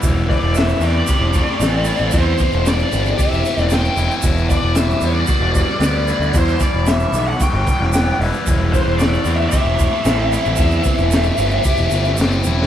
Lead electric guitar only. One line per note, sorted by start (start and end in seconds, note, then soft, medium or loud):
0.29 0.54 D5 medium
0.57 0.83 E5 medium
0.84 2.17 D5 medium
2.18 2.68 C5 medium
2.69 3.21 D5 medium
3.20 3.62 E5 medium
3.62 3.73 D5 medium
3.74 4.09 G5 medium
4.50 4.77 D5 medium
4.75 5.03 E5 medium
5.05 6.36 D5 medium
6.37 6.61 C5 medium
6.62 6.89 D5 medium
6.87 7.27 E5 medium
7.28 7.41 F#5 medium
7.42 8.17 G5 medium
8.72 8.98 C5 medium
8.98 9.40 D5 medium
9.36 9.47 E5 medium
9.48 12.13 E5 medium